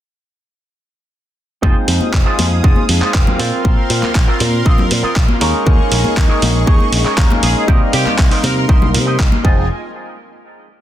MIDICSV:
0, 0, Header, 1, 9, 480
1, 0, Start_track
1, 0, Key_signature, -4, "minor"
1, 0, Tempo, 504202
1, 1552, Time_signature, 4, 2, 24, 8
1, 10292, End_track
2, 0, Start_track
2, 0, Title_t, "Analog synth pad"
2, 0, Program_c, 0, 89
2, 1550, Note_on_c, 0, 77, 74
2, 1551, Note_on_c, 0, 87, 91
2, 1555, Note_on_c, 0, 68, 79
2, 3214, Note_off_c, 0, 87, 0
2, 3216, Note_off_c, 0, 68, 0
2, 3226, Note_on_c, 0, 70, 83
2, 3230, Note_on_c, 0, 84, 92
2, 5115, Note_off_c, 0, 77, 0
2, 5129, Note_off_c, 0, 70, 0
2, 5131, Note_off_c, 0, 84, 0
2, 5158, Note_on_c, 0, 75, 77
2, 5158, Note_on_c, 0, 85, 90
2, 5160, Note_on_c, 0, 68, 82
2, 7293, Note_off_c, 0, 85, 0
2, 7294, Note_off_c, 0, 68, 0
2, 7302, Note_on_c, 0, 84, 91
2, 7303, Note_on_c, 0, 70, 82
2, 8957, Note_off_c, 0, 75, 0
2, 8970, Note_off_c, 0, 70, 0
2, 8970, Note_off_c, 0, 84, 0
2, 10292, End_track
3, 0, Start_track
3, 0, Title_t, "Clean electric guitar"
3, 0, Program_c, 1, 27
3, 1543, Note_on_c, 1, 63, 111
3, 1549, Note_on_c, 1, 65, 97
3, 1554, Note_on_c, 1, 68, 100
3, 1559, Note_on_c, 1, 72, 116
3, 1669, Note_off_c, 1, 63, 0
3, 1672, Note_off_c, 1, 65, 0
3, 1675, Note_off_c, 1, 68, 0
3, 1677, Note_off_c, 1, 72, 0
3, 2141, Note_on_c, 1, 63, 88
3, 2146, Note_on_c, 1, 65, 79
3, 2153, Note_on_c, 1, 68, 74
3, 2157, Note_on_c, 1, 72, 95
3, 2326, Note_off_c, 1, 63, 0
3, 2329, Note_off_c, 1, 65, 0
3, 2331, Note_off_c, 1, 68, 0
3, 2334, Note_off_c, 1, 72, 0
3, 2501, Note_on_c, 1, 63, 87
3, 2506, Note_on_c, 1, 65, 78
3, 2511, Note_on_c, 1, 68, 76
3, 2516, Note_on_c, 1, 72, 94
3, 2687, Note_off_c, 1, 63, 0
3, 2690, Note_off_c, 1, 65, 0
3, 2692, Note_off_c, 1, 68, 0
3, 2695, Note_off_c, 1, 72, 0
3, 2864, Note_on_c, 1, 63, 88
3, 2874, Note_on_c, 1, 65, 75
3, 2876, Note_on_c, 1, 68, 81
3, 2881, Note_on_c, 1, 72, 96
3, 3049, Note_off_c, 1, 63, 0
3, 3051, Note_off_c, 1, 65, 0
3, 3054, Note_off_c, 1, 68, 0
3, 3056, Note_off_c, 1, 72, 0
3, 3222, Note_on_c, 1, 60, 94
3, 3226, Note_on_c, 1, 65, 91
3, 3233, Note_on_c, 1, 70, 77
3, 3237, Note_on_c, 1, 72, 105
3, 3612, Note_off_c, 1, 60, 0
3, 3615, Note_off_c, 1, 65, 0
3, 3617, Note_off_c, 1, 70, 0
3, 3619, Note_off_c, 1, 72, 0
3, 4065, Note_on_c, 1, 60, 89
3, 4071, Note_on_c, 1, 65, 82
3, 4076, Note_on_c, 1, 70, 77
3, 4082, Note_on_c, 1, 72, 89
3, 4248, Note_off_c, 1, 60, 0
3, 4251, Note_off_c, 1, 65, 0
3, 4254, Note_off_c, 1, 70, 0
3, 4256, Note_off_c, 1, 72, 0
3, 4424, Note_on_c, 1, 60, 87
3, 4432, Note_on_c, 1, 65, 70
3, 4434, Note_on_c, 1, 70, 80
3, 4439, Note_on_c, 1, 75, 95
3, 4609, Note_off_c, 1, 60, 0
3, 4611, Note_off_c, 1, 65, 0
3, 4614, Note_off_c, 1, 70, 0
3, 4616, Note_off_c, 1, 75, 0
3, 4783, Note_on_c, 1, 60, 89
3, 4788, Note_on_c, 1, 65, 81
3, 4793, Note_on_c, 1, 70, 83
3, 4799, Note_on_c, 1, 75, 100
3, 4967, Note_off_c, 1, 60, 0
3, 4969, Note_off_c, 1, 65, 0
3, 4972, Note_off_c, 1, 70, 0
3, 4975, Note_off_c, 1, 75, 0
3, 5140, Note_on_c, 1, 63, 98
3, 5147, Note_on_c, 1, 68, 77
3, 5151, Note_on_c, 1, 70, 87
3, 5157, Note_on_c, 1, 73, 106
3, 5532, Note_off_c, 1, 63, 0
3, 5534, Note_off_c, 1, 68, 0
3, 5537, Note_off_c, 1, 70, 0
3, 5540, Note_off_c, 1, 73, 0
3, 5982, Note_on_c, 1, 63, 101
3, 5988, Note_on_c, 1, 68, 78
3, 5993, Note_on_c, 1, 70, 83
3, 6001, Note_on_c, 1, 73, 91
3, 6167, Note_off_c, 1, 63, 0
3, 6169, Note_off_c, 1, 68, 0
3, 6173, Note_off_c, 1, 70, 0
3, 6174, Note_off_c, 1, 73, 0
3, 6341, Note_on_c, 1, 63, 90
3, 6345, Note_on_c, 1, 68, 83
3, 6350, Note_on_c, 1, 70, 81
3, 6357, Note_on_c, 1, 73, 100
3, 6527, Note_off_c, 1, 63, 0
3, 6529, Note_off_c, 1, 68, 0
3, 6532, Note_off_c, 1, 70, 0
3, 6535, Note_off_c, 1, 73, 0
3, 6704, Note_on_c, 1, 63, 89
3, 6709, Note_on_c, 1, 68, 83
3, 6713, Note_on_c, 1, 70, 81
3, 6718, Note_on_c, 1, 73, 103
3, 6888, Note_off_c, 1, 63, 0
3, 6890, Note_off_c, 1, 68, 0
3, 6892, Note_off_c, 1, 70, 0
3, 6895, Note_off_c, 1, 73, 0
3, 7301, Note_on_c, 1, 63, 117
3, 7307, Note_on_c, 1, 67, 104
3, 7313, Note_on_c, 1, 70, 106
3, 7319, Note_on_c, 1, 72, 107
3, 7428, Note_off_c, 1, 63, 0
3, 7431, Note_off_c, 1, 67, 0
3, 7434, Note_off_c, 1, 70, 0
3, 7436, Note_off_c, 1, 72, 0
3, 7907, Note_on_c, 1, 63, 94
3, 7914, Note_on_c, 1, 67, 81
3, 7919, Note_on_c, 1, 70, 87
3, 7924, Note_on_c, 1, 72, 102
3, 8089, Note_off_c, 1, 63, 0
3, 8093, Note_off_c, 1, 67, 0
3, 8095, Note_off_c, 1, 70, 0
3, 8097, Note_off_c, 1, 72, 0
3, 8264, Note_on_c, 1, 63, 90
3, 8269, Note_on_c, 1, 67, 78
3, 8274, Note_on_c, 1, 70, 80
3, 8279, Note_on_c, 1, 72, 103
3, 8449, Note_off_c, 1, 63, 0
3, 8451, Note_off_c, 1, 67, 0
3, 8453, Note_off_c, 1, 70, 0
3, 8456, Note_off_c, 1, 72, 0
3, 8624, Note_on_c, 1, 63, 93
3, 8629, Note_on_c, 1, 67, 86
3, 8634, Note_on_c, 1, 70, 83
3, 8640, Note_on_c, 1, 75, 105
3, 8808, Note_off_c, 1, 63, 0
3, 8810, Note_off_c, 1, 67, 0
3, 8812, Note_off_c, 1, 70, 0
3, 8816, Note_off_c, 1, 75, 0
3, 8987, Note_on_c, 1, 68, 99
3, 8989, Note_on_c, 1, 65, 84
3, 8994, Note_on_c, 1, 63, 80
3, 9212, Note_off_c, 1, 63, 0
3, 9212, Note_off_c, 1, 65, 0
3, 9214, Note_off_c, 1, 68, 0
3, 10292, End_track
4, 0, Start_track
4, 0, Title_t, "Trumpet section"
4, 0, Program_c, 2, 61
4, 7073, Note_on_c, 2, 68, 90
4, 7150, Note_off_c, 2, 68, 0
4, 7198, Note_on_c, 2, 68, 77
4, 7271, Note_off_c, 2, 68, 0
4, 7554, Note_on_c, 2, 67, 92
4, 7764, Note_off_c, 2, 67, 0
4, 8033, Note_on_c, 2, 70, 90
4, 8110, Note_off_c, 2, 70, 0
4, 8153, Note_on_c, 2, 70, 82
4, 8229, Note_off_c, 2, 70, 0
4, 10292, End_track
5, 0, Start_track
5, 0, Title_t, "Tine electric piano"
5, 0, Program_c, 3, 4
5, 1544, Note_on_c, 3, 56, 91
5, 1545, Note_on_c, 3, 60, 81
5, 1552, Note_on_c, 3, 63, 81
5, 1558, Note_on_c, 3, 65, 80
5, 1561, Note_on_c, 3, 72, 98
5, 2959, Note_off_c, 3, 56, 0
5, 2960, Note_off_c, 3, 60, 0
5, 2963, Note_off_c, 3, 63, 0
5, 2966, Note_off_c, 3, 65, 0
5, 2968, Note_off_c, 3, 72, 0
5, 2988, Note_on_c, 3, 60, 98
5, 2994, Note_on_c, 3, 65, 86
5, 2999, Note_on_c, 3, 70, 109
5, 3441, Note_off_c, 3, 60, 0
5, 3444, Note_off_c, 3, 65, 0
5, 3447, Note_off_c, 3, 70, 0
5, 3466, Note_on_c, 3, 60, 92
5, 3474, Note_on_c, 3, 65, 85
5, 3482, Note_on_c, 3, 70, 102
5, 5120, Note_off_c, 3, 60, 0
5, 5125, Note_off_c, 3, 65, 0
5, 5128, Note_off_c, 3, 70, 0
5, 5144, Note_on_c, 3, 56, 104
5, 5149, Note_on_c, 3, 58, 97
5, 5151, Note_on_c, 3, 61, 94
5, 5151, Note_on_c, 3, 63, 93
5, 5154, Note_on_c, 3, 70, 117
5, 5360, Note_off_c, 3, 56, 0
5, 5362, Note_off_c, 3, 58, 0
5, 5363, Note_off_c, 3, 61, 0
5, 5363, Note_off_c, 3, 63, 0
5, 5364, Note_off_c, 3, 70, 0
5, 5381, Note_on_c, 3, 56, 92
5, 5385, Note_on_c, 3, 58, 87
5, 5390, Note_on_c, 3, 61, 88
5, 5394, Note_on_c, 3, 63, 84
5, 5399, Note_on_c, 3, 70, 101
5, 6798, Note_off_c, 3, 56, 0
5, 6800, Note_off_c, 3, 58, 0
5, 6802, Note_off_c, 3, 61, 0
5, 6804, Note_off_c, 3, 63, 0
5, 6807, Note_off_c, 3, 70, 0
5, 6823, Note_on_c, 3, 56, 98
5, 6826, Note_on_c, 3, 58, 92
5, 6827, Note_on_c, 3, 61, 92
5, 6832, Note_on_c, 3, 63, 91
5, 6832, Note_on_c, 3, 70, 112
5, 7279, Note_off_c, 3, 56, 0
5, 7280, Note_off_c, 3, 58, 0
5, 7281, Note_off_c, 3, 61, 0
5, 7283, Note_off_c, 3, 63, 0
5, 7283, Note_off_c, 3, 70, 0
5, 7301, Note_on_c, 3, 55, 96
5, 7304, Note_on_c, 3, 58, 87
5, 7310, Note_on_c, 3, 60, 88
5, 7313, Note_on_c, 3, 63, 87
5, 7320, Note_on_c, 3, 70, 107
5, 8958, Note_off_c, 3, 55, 0
5, 8959, Note_off_c, 3, 58, 0
5, 8962, Note_off_c, 3, 60, 0
5, 8964, Note_off_c, 3, 63, 0
5, 8967, Note_off_c, 3, 70, 0
5, 8981, Note_on_c, 3, 53, 90
5, 8990, Note_on_c, 3, 56, 84
5, 8995, Note_on_c, 3, 60, 86
5, 9001, Note_on_c, 3, 63, 80
5, 9011, Note_on_c, 3, 68, 96
5, 9165, Note_off_c, 3, 53, 0
5, 9170, Note_off_c, 3, 56, 0
5, 9173, Note_off_c, 3, 60, 0
5, 9176, Note_off_c, 3, 63, 0
5, 9181, Note_off_c, 3, 68, 0
5, 10292, End_track
6, 0, Start_track
6, 0, Title_t, "Picked electric bass"
6, 0, Program_c, 4, 34
6, 1553, Note_on_c, 4, 29, 102
6, 1654, Note_off_c, 4, 29, 0
6, 1789, Note_on_c, 4, 41, 97
6, 1892, Note_off_c, 4, 41, 0
6, 2032, Note_on_c, 4, 29, 90
6, 2133, Note_off_c, 4, 29, 0
6, 2272, Note_on_c, 4, 41, 89
6, 2472, Note_off_c, 4, 41, 0
6, 2512, Note_on_c, 4, 29, 91
6, 2613, Note_off_c, 4, 29, 0
6, 2752, Note_on_c, 4, 41, 81
6, 2853, Note_off_c, 4, 41, 0
6, 2995, Note_on_c, 4, 29, 89
6, 3094, Note_off_c, 4, 29, 0
6, 3232, Note_on_c, 4, 46, 78
6, 3333, Note_off_c, 4, 46, 0
6, 3474, Note_on_c, 4, 34, 100
6, 3574, Note_off_c, 4, 34, 0
6, 3713, Note_on_c, 4, 46, 99
6, 3814, Note_off_c, 4, 46, 0
6, 3954, Note_on_c, 4, 34, 92
6, 4054, Note_off_c, 4, 34, 0
6, 4194, Note_on_c, 4, 46, 94
6, 4393, Note_off_c, 4, 46, 0
6, 4435, Note_on_c, 4, 34, 94
6, 4535, Note_off_c, 4, 34, 0
6, 4677, Note_on_c, 4, 46, 79
6, 4776, Note_off_c, 4, 46, 0
6, 4915, Note_on_c, 4, 34, 95
6, 5014, Note_off_c, 4, 34, 0
6, 5154, Note_on_c, 4, 39, 85
6, 5254, Note_off_c, 4, 39, 0
6, 5394, Note_on_c, 4, 39, 101
6, 5494, Note_off_c, 4, 39, 0
6, 5633, Note_on_c, 4, 34, 104
6, 5734, Note_off_c, 4, 34, 0
6, 5874, Note_on_c, 4, 39, 91
6, 5974, Note_off_c, 4, 39, 0
6, 6115, Note_on_c, 4, 34, 97
6, 6314, Note_off_c, 4, 34, 0
6, 6354, Note_on_c, 4, 39, 94
6, 6454, Note_off_c, 4, 39, 0
6, 6590, Note_on_c, 4, 34, 81
6, 6692, Note_off_c, 4, 34, 0
6, 6832, Note_on_c, 4, 39, 95
6, 6933, Note_off_c, 4, 39, 0
6, 7073, Note_on_c, 4, 34, 82
6, 7174, Note_off_c, 4, 34, 0
6, 7314, Note_on_c, 4, 36, 101
6, 7414, Note_off_c, 4, 36, 0
6, 7553, Note_on_c, 4, 48, 102
6, 7654, Note_off_c, 4, 48, 0
6, 7794, Note_on_c, 4, 36, 91
6, 7894, Note_off_c, 4, 36, 0
6, 8031, Note_on_c, 4, 48, 94
6, 8232, Note_off_c, 4, 48, 0
6, 8275, Note_on_c, 4, 36, 97
6, 8512, Note_on_c, 4, 48, 81
6, 8526, Note_off_c, 4, 36, 0
6, 8754, Note_on_c, 4, 36, 89
6, 8768, Note_off_c, 4, 48, 0
6, 8854, Note_off_c, 4, 36, 0
6, 8992, Note_on_c, 4, 29, 98
6, 9215, Note_off_c, 4, 29, 0
6, 10292, End_track
7, 0, Start_track
7, 0, Title_t, "Muted clean electric guitar strokes"
7, 1782, Note_on_c, 9, 29, 33
7, 1877, Note_off_c, 9, 29, 0
7, 3699, Note_on_c, 9, 29, 33
7, 3794, Note_off_c, 9, 29, 0
7, 5624, Note_on_c, 9, 29, 34
7, 5719, Note_off_c, 9, 29, 0
7, 7059, Note_on_c, 9, 29, 34
7, 7154, Note_off_c, 9, 29, 0
7, 7542, Note_on_c, 9, 29, 35
7, 7638, Note_off_c, 9, 29, 0
7, 10292, End_track
8, 0, Start_track
8, 0, Title_t, "Muted picked electric bass strokes"
8, 1913, Note_on_c, 9, 29, 44
8, 2009, Note_off_c, 9, 29, 0
8, 2874, Note_on_c, 9, 29, 44
8, 2969, Note_off_c, 9, 29, 0
8, 3836, Note_on_c, 9, 29, 46
8, 3931, Note_off_c, 9, 29, 0
8, 4798, Note_on_c, 9, 29, 46
8, 4893, Note_off_c, 9, 29, 0
8, 5759, Note_on_c, 9, 29, 44
8, 5854, Note_off_c, 9, 29, 0
8, 6714, Note_on_c, 9, 29, 44
8, 6809, Note_off_c, 9, 29, 0
8, 7673, Note_on_c, 9, 29, 45
8, 7769, Note_off_c, 9, 29, 0
8, 10292, End_track
9, 0, Start_track
9, 0, Title_t, "Drums"
9, 1553, Note_on_c, 9, 36, 112
9, 1556, Note_on_c, 9, 63, 97
9, 1648, Note_off_c, 9, 36, 0
9, 1651, Note_off_c, 9, 63, 0
9, 1789, Note_on_c, 9, 46, 109
9, 1885, Note_off_c, 9, 46, 0
9, 1912, Note_on_c, 9, 63, 70
9, 2007, Note_off_c, 9, 63, 0
9, 2033, Note_on_c, 9, 36, 106
9, 2033, Note_on_c, 9, 39, 127
9, 2128, Note_off_c, 9, 36, 0
9, 2128, Note_off_c, 9, 39, 0
9, 2272, Note_on_c, 9, 63, 100
9, 2273, Note_on_c, 9, 46, 108
9, 2367, Note_off_c, 9, 63, 0
9, 2368, Note_off_c, 9, 46, 0
9, 2514, Note_on_c, 9, 36, 119
9, 2609, Note_off_c, 9, 36, 0
9, 2627, Note_on_c, 9, 63, 63
9, 2723, Note_off_c, 9, 63, 0
9, 2750, Note_on_c, 9, 46, 105
9, 2845, Note_off_c, 9, 46, 0
9, 2873, Note_on_c, 9, 39, 36
9, 2968, Note_off_c, 9, 39, 0
9, 2991, Note_on_c, 9, 46, 62
9, 2993, Note_on_c, 9, 39, 126
9, 2995, Note_on_c, 9, 36, 107
9, 3086, Note_off_c, 9, 46, 0
9, 3088, Note_off_c, 9, 39, 0
9, 3090, Note_off_c, 9, 36, 0
9, 3114, Note_on_c, 9, 63, 88
9, 3116, Note_on_c, 9, 64, 82
9, 3210, Note_off_c, 9, 63, 0
9, 3211, Note_off_c, 9, 64, 0
9, 3232, Note_on_c, 9, 46, 113
9, 3327, Note_off_c, 9, 46, 0
9, 3471, Note_on_c, 9, 63, 95
9, 3474, Note_on_c, 9, 36, 122
9, 3567, Note_off_c, 9, 63, 0
9, 3570, Note_off_c, 9, 36, 0
9, 3712, Note_on_c, 9, 46, 113
9, 3808, Note_off_c, 9, 46, 0
9, 3833, Note_on_c, 9, 63, 65
9, 3838, Note_on_c, 9, 39, 39
9, 3929, Note_off_c, 9, 63, 0
9, 3933, Note_off_c, 9, 39, 0
9, 3953, Note_on_c, 9, 39, 127
9, 3954, Note_on_c, 9, 36, 113
9, 4048, Note_off_c, 9, 39, 0
9, 4049, Note_off_c, 9, 36, 0
9, 4192, Note_on_c, 9, 46, 109
9, 4198, Note_on_c, 9, 63, 98
9, 4287, Note_off_c, 9, 46, 0
9, 4293, Note_off_c, 9, 63, 0
9, 4435, Note_on_c, 9, 36, 119
9, 4530, Note_off_c, 9, 36, 0
9, 4551, Note_on_c, 9, 63, 73
9, 4563, Note_on_c, 9, 64, 98
9, 4646, Note_off_c, 9, 63, 0
9, 4658, Note_off_c, 9, 64, 0
9, 4673, Note_on_c, 9, 46, 113
9, 4768, Note_off_c, 9, 46, 0
9, 4913, Note_on_c, 9, 39, 127
9, 4915, Note_on_c, 9, 36, 114
9, 5009, Note_off_c, 9, 39, 0
9, 5010, Note_off_c, 9, 36, 0
9, 5031, Note_on_c, 9, 63, 100
9, 5126, Note_off_c, 9, 63, 0
9, 5152, Note_on_c, 9, 46, 117
9, 5247, Note_off_c, 9, 46, 0
9, 5390, Note_on_c, 9, 63, 95
9, 5395, Note_on_c, 9, 36, 121
9, 5485, Note_off_c, 9, 63, 0
9, 5490, Note_off_c, 9, 36, 0
9, 5632, Note_on_c, 9, 46, 118
9, 5727, Note_off_c, 9, 46, 0
9, 5753, Note_on_c, 9, 63, 75
9, 5848, Note_off_c, 9, 63, 0
9, 5874, Note_on_c, 9, 36, 114
9, 5875, Note_on_c, 9, 39, 127
9, 5970, Note_off_c, 9, 36, 0
9, 5971, Note_off_c, 9, 39, 0
9, 6114, Note_on_c, 9, 46, 118
9, 6119, Note_on_c, 9, 63, 102
9, 6210, Note_off_c, 9, 46, 0
9, 6215, Note_off_c, 9, 63, 0
9, 6354, Note_on_c, 9, 36, 123
9, 6449, Note_off_c, 9, 36, 0
9, 6477, Note_on_c, 9, 63, 67
9, 6572, Note_off_c, 9, 63, 0
9, 6593, Note_on_c, 9, 46, 111
9, 6688, Note_off_c, 9, 46, 0
9, 6716, Note_on_c, 9, 39, 36
9, 6811, Note_off_c, 9, 39, 0
9, 6832, Note_on_c, 9, 46, 64
9, 6833, Note_on_c, 9, 36, 118
9, 6834, Note_on_c, 9, 39, 124
9, 6927, Note_off_c, 9, 46, 0
9, 6928, Note_off_c, 9, 36, 0
9, 6929, Note_off_c, 9, 39, 0
9, 6955, Note_on_c, 9, 64, 82
9, 6964, Note_on_c, 9, 63, 108
9, 7050, Note_off_c, 9, 64, 0
9, 7060, Note_off_c, 9, 63, 0
9, 7072, Note_on_c, 9, 46, 122
9, 7167, Note_off_c, 9, 46, 0
9, 7314, Note_on_c, 9, 36, 123
9, 7327, Note_on_c, 9, 63, 93
9, 7409, Note_off_c, 9, 36, 0
9, 7422, Note_off_c, 9, 63, 0
9, 7552, Note_on_c, 9, 46, 114
9, 7647, Note_off_c, 9, 46, 0
9, 7676, Note_on_c, 9, 39, 39
9, 7680, Note_on_c, 9, 63, 74
9, 7771, Note_off_c, 9, 39, 0
9, 7776, Note_off_c, 9, 63, 0
9, 7792, Note_on_c, 9, 39, 127
9, 7794, Note_on_c, 9, 36, 110
9, 7887, Note_off_c, 9, 39, 0
9, 7889, Note_off_c, 9, 36, 0
9, 7915, Note_on_c, 9, 46, 66
9, 8011, Note_off_c, 9, 46, 0
9, 8029, Note_on_c, 9, 63, 98
9, 8034, Note_on_c, 9, 46, 108
9, 8034, Note_on_c, 9, 64, 84
9, 8124, Note_off_c, 9, 63, 0
9, 8129, Note_off_c, 9, 46, 0
9, 8129, Note_off_c, 9, 64, 0
9, 8273, Note_on_c, 9, 36, 124
9, 8368, Note_off_c, 9, 36, 0
9, 8397, Note_on_c, 9, 64, 99
9, 8398, Note_on_c, 9, 63, 71
9, 8492, Note_off_c, 9, 64, 0
9, 8493, Note_off_c, 9, 63, 0
9, 8516, Note_on_c, 9, 46, 108
9, 8611, Note_off_c, 9, 46, 0
9, 8754, Note_on_c, 9, 36, 112
9, 8756, Note_on_c, 9, 39, 119
9, 8849, Note_off_c, 9, 36, 0
9, 8851, Note_off_c, 9, 39, 0
9, 8874, Note_on_c, 9, 63, 92
9, 8969, Note_off_c, 9, 63, 0
9, 8993, Note_on_c, 9, 36, 114
9, 9089, Note_off_c, 9, 36, 0
9, 10292, End_track
0, 0, End_of_file